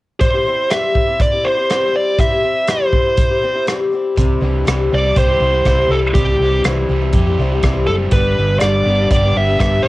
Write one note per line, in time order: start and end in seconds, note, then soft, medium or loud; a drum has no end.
0.20 0.34 C3 medium
0.20 0.34 G3 medium
0.20 0.34 C4 medium
0.20 0.33 E4 medium
0.20 0.32 G4 medium
0.20 0.72 C5 medium
0.20 kick medium
0.20 closed hi-hat medium
0.34 0.46 C4 soft
0.34 0.46 E4 soft
0.34 0.46 G4 soft
0.46 0.70 G3 soft
0.46 0.71 C4 soft
0.46 0.71 E4 soft
0.46 0.72 G4 soft
0.70 0.96 C3 medium
0.70 0.93 G3 medium
0.70 0.94 C4 medium
0.70 0.95 E4 medium
0.70 0.96 G4 medium
0.70 1.21 E5 medium
0.70 cross-stick medium
0.70 closed hi-hat medium
0.94 1.07 G3 soft
0.94 1.08 C4 soft
0.94 1.07 E4 medium
0.94 1.05 G4 soft
0.94 kick medium
1.07 1.33 C4 soft
1.07 1.32 E4 soft
1.07 1.31 G4 soft
1.20 1.47 D5 medium
1.20 kick medium
1.20 closed hi-hat medium
1.32 1.44 C4 soft
1.32 1.46 E4 soft
1.32 1.45 G4 soft
1.44 1.57 G3 soft
1.44 1.58 C4 soft
1.44 1.57 E4 medium
1.44 1.56 G4 medium
1.44 1.96 C5 medium
1.57 1.70 C4 soft
1.57 1.70 E4 soft
1.57 1.70 G4 soft
1.69 1.95 C3 medium
1.69 1.92 G3 medium
1.69 1.93 C4 medium
1.69 1.94 E4 medium
1.69 1.95 G4 medium
1.69 cross-stick medium
1.69 closed hi-hat soft
1.93 2.18 G3 soft
1.93 2.18 C4 soft
1.93 2.19 E4 soft
1.93 2.19 G4 soft
1.93 2.20 D5 medium
2.18 2.31 C3 medium
2.18 2.32 G3 medium
2.18 2.32 C4 medium
2.18 2.31 E4 medium
2.18 2.29 G4 medium
2.18 2.66 E5 medium
2.18 kick medium
2.18 closed hi-hat medium
2.30 2.42 C4 soft
2.30 2.42 E4 soft
2.30 2.44 G4 soft
2.42 2.68 G3 soft
2.42 2.68 C4 soft
2.42 2.69 E4 soft
2.42 2.69 G4 medium
2.68 2.94 C3 medium
2.68 2.92 G3 medium
2.68 2.93 C4 medium
2.68 2.93 E4 medium
2.68 2.95 G4 medium
2.68 3.65 C5 medium
2.68 cross-stick medium
2.68 closed hi-hat medium
2.93 3.06 G3 soft
2.93 3.05 C4 soft
2.93 3.05 E4 medium
2.93 3.03 G4 medium
2.93 kick medium
3.04 3.31 C4 soft
3.04 3.30 E4 soft
3.04 3.29 G4 soft
3.18 kick loud
3.18 closed hi-hat medium
3.30 3.42 C4 soft
3.30 3.43 E4 soft
3.30 3.43 G4 soft
3.42 3.55 G3 medium
3.42 3.56 C4 medium
3.42 3.54 E4 medium
3.42 3.52 G4 medium
3.54 3.67 E4 soft
3.54 3.67 G4 soft
3.58 3.67 C4 soft
3.66 3.92 C3 medium
3.66 3.91 G3 medium
3.66 3.92 C4 medium
3.66 3.92 E4 medium
3.66 3.93 G4 medium
3.66 cross-stick medium
3.66 closed hi-hat soft
3.92 4.15 G3 medium
3.92 4.16 C4 medium
3.92 4.16 E4 medium
3.92 4.17 G4 medium
4.16 4.40 C2 medium
4.16 4.42 C3 medium
4.16 4.39 G3 medium
4.16 4.41 C4 medium
4.16 4.42 E4 medium
4.16 4.42 G4 medium
4.16 kick medium
4.16 closed hi-hat medium
4.41 4.65 C2 medium
4.41 4.67 E3 medium
4.41 4.65 G3 soft
4.41 4.65 C4 medium
4.41 4.65 E4 medium
4.41 4.66 G4 medium
4.65 4.90 C2 medium
4.65 4.91 C3 medium
4.65 5.64 E3 medium
4.65 4.89 G3 medium
4.65 4.90 C4 medium
4.65 4.91 E4 medium
4.65 4.92 G4 medium
4.65 cross-stick loud
4.65 closed hi-hat medium
4.90 5.15 C2 medium
4.90 5.03 G3 soft
4.90 5.04 C4 soft
4.90 5.04 E4 medium
4.90 5.03 G4 soft
4.95 5.18 D5 medium
5.04 5.30 C4 soft
5.04 5.28 E4 soft
5.04 5.27 G4 soft
5.15 5.39 C2 medium
5.15 7.14 G4 medium
5.15 5.94 C5 medium
5.15 kick loud
5.15 closed hi-hat medium
5.28 5.39 C4 soft
5.28 5.41 E4 soft
5.28 5.41 G4 soft
5.40 5.64 C2 medium
5.40 5.53 G3 soft
5.40 5.52 C4 soft
5.40 5.51 E4 soft
5.40 5.49 G4 medium
5.51 5.65 C4 soft
5.51 5.65 E4 soft
5.51 5.65 G4 soft
5.65 5.88 C2 medium
5.65 5.90 C3 medium
5.65 6.40 E3 medium
5.65 5.89 G3 medium
5.65 5.90 C4 medium
5.65 5.90 E4 medium
5.65 5.91 G4 medium
5.65 kick medium
5.65 cross-stick medium
5.65 closed hi-hat soft
5.89 6.13 C2 medium
5.89 6.14 G3 soft
5.89 6.14 C4 medium
5.89 6.14 E4 medium
5.89 5.98 A4 medium
5.93 6.15 G4 medium
6.14 6.38 C2 medium
6.14 6.40 C3 medium
6.14 6.38 G3 medium
6.14 6.40 C4 medium
6.14 6.40 E4 medium
6.14 6.61 G4 medium
6.14 6.41 G4 medium
6.14 kick medium
6.14 closed hi-hat medium
6.39 6.63 C2 medium
6.39 6.64 E3 medium
6.39 6.64 G3 soft
6.39 6.65 C4 soft
6.39 6.65 E4 soft
6.39 6.66 G4 medium
6.64 6.88 C2 medium
6.64 6.89 C3 medium
6.64 7.60 E3 medium
6.64 6.87 G3 medium
6.64 6.88 C4 medium
6.64 6.90 E4 medium
6.64 6.90 G4 medium
6.64 cross-stick loud
6.64 closed hi-hat medium
6.89 7.12 C2 medium
6.89 7.02 G3 medium
6.89 7.02 C4 medium
6.89 7.01 E4 medium
6.89 7.00 G4 medium
7.01 7.28 C4 soft
7.01 7.27 E4 soft
7.01 7.25 G4 soft
7.13 7.36 F2 medium
7.13 9.11 G4 medium
7.13 kick medium
7.13 closed hi-hat medium
7.26 7.39 C4 soft
7.26 7.40 E4 soft
7.26 7.39 G4 soft
7.39 7.62 C2 medium
7.39 7.52 G3 medium
7.39 7.52 C4 medium
7.39 7.53 E4 medium
7.39 7.51 G4 medium
7.52 7.64 C4 soft
7.52 7.64 E4 soft
7.52 7.64 G4 soft
7.62 7.86 C2 medium
7.62 7.89 C3 medium
7.62 8.12 E3 medium
7.62 7.88 G3 medium
7.62 7.89 C4 medium
7.62 7.89 E4 medium
7.62 kick medium
7.62 cross-stick medium
7.62 closed hi-hat soft
7.66 7.90 G4 medium
7.87 8.11 F#1 medium
7.87 8.14 G3 medium
7.87 7.94 A4 medium
7.91 8.14 C4 medium
7.91 8.14 E4 soft
7.91 8.14 G4 soft
8.11 8.35 G1 medium
8.11 8.38 G2 medium
8.11 8.38 D3 medium
8.11 8.38 G3 medium
8.11 8.38 B3 medium
8.11 8.39 D4 medium
8.11 8.59 B4 medium
8.11 kick medium
8.11 closed hi-hat medium
8.15 8.39 G4 medium
8.37 8.61 G1 medium
8.37 9.61 D3 medium
8.37 8.61 G3 medium
8.37 8.61 B3 soft
8.37 8.62 D4 medium
8.37 8.62 G4 medium
8.60 8.85 G1 medium
8.60 8.86 G2 medium
8.60 8.87 D3 medium
8.60 8.87 G3 medium
8.60 8.87 B3 medium
8.60 8.88 D4 medium
8.60 9.07 D5 medium
8.60 cross-stick loud
8.60 closed hi-hat medium
8.64 8.88 G4 medium
8.86 9.09 G1 medium
8.86 9.00 G3 soft
8.86 9.00 B3 medium
8.86 9.01 D4 soft
8.91 9.00 G4 medium
9.01 9.24 G3 soft
9.01 9.24 B3 soft
9.01 9.24 D4 soft
9.01 9.21 G4 soft
9.10 9.34 G1 medium
9.10 9.88 G4 medium
9.10 9.35 D5 medium
9.10 kick medium
9.10 closed hi-hat medium
9.22 9.34 G3 soft
9.22 9.35 B3 soft
9.22 9.37 D4 soft
9.22 9.36 G4 soft
9.35 9.59 G1 medium
9.35 9.48 G3 medium
9.35 9.49 B3 medium
9.35 9.48 D4 medium
9.35 9.46 G4 medium
9.35 9.59 E5 medium
9.48 9.58 G3 soft
9.48 9.59 B3 soft
9.48 9.59 D4 soft
9.48 9.60 G4 soft
9.59 9.83 G1 medium
9.59 9.85 D3 medium
9.59 9.84 G3 medium
9.59 9.85 B3 medium
9.59 9.85 D4 medium
9.59 9.86 G4 medium
9.59 9.83 E5 medium
9.59 kick medium
9.59 cross-stick medium
9.59 closed hi-hat medium
9.82 9.88 G1 medium
9.82 9.88 B3 medium
9.82 9.88 D5 medium